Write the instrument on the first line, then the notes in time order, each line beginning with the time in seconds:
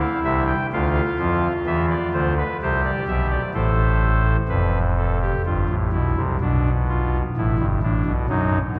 pipe organ
Already playing: E4
0.00 F5
0.24 C2 C3 E5
0.47 G5
0.72 D2 D3 F4 F5
1.19 F2 F3
1.66 E2 E3 E5
1.90 D5
2.14 D2 D3 C5
2.38 B4
2.62 C2 C3 G4 C5
2.85 D5
3.08 B1 B2 E5
3.31 D5
3.54 A1 A2 A4 C5
4.49 F1 F2 B4
4.98 A4
5.22 G4
5.46 G1 G2 F4
5.69 A1 A2
5.92 B1 B2 E4
6.17 C2 C3
6.41 B1 B2 D4
6.89 F4
7.37 A1 A2 E4
7.59 G1 G2
7.82 A1 A2 D4
8.06 B1 B2
8.29 F#2 F#3 D#4
8.76 D#2